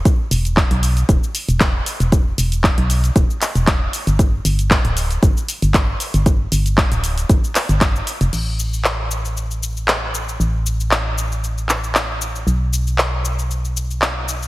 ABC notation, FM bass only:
X:1
M:4/4
L:1/16
Q:"Swing 16ths" 1/4=116
K:Gmix
V:1 name="FM bass" clef=bass
z2 E,,,3 B,,,3 E,,, z2 E,,,3 z E,,,- | E,,,2 E,,,3 B,,,3 E,,, z2 E,,,3 z G,,,- | G,,,2 G,,,3 D,,,3 G,,, z2 G,,,3 z G,,,- | G,,,2 G,,,3 D,,,3 G,,, z2 G,,,3 z F,,, |
A,,,16 | A,,,16 | B,,,16 |]